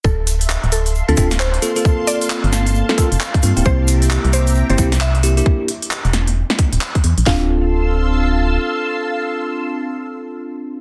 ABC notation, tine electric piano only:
X:1
M:4/4
L:1/16
Q:"Swing 16ths" 1/4=133
K:Dm
V:1 name="Tine electric piano"
z8 z [CDFA] [CDFA] z3 [B,CFA] [B,CFA]- | [B,CFA]8- [B,CFA] [B,CFA] [B,CFA] z3 [B,CFA] [B,CEG]- | [B,CEG]8- [B,CEG] [B,CEG] [B,CEG] z3 [B,CEG] [B,DEG]- | [B,DEG]2 z12 z2 |
[CDFA]16- | [CDFA]16 |]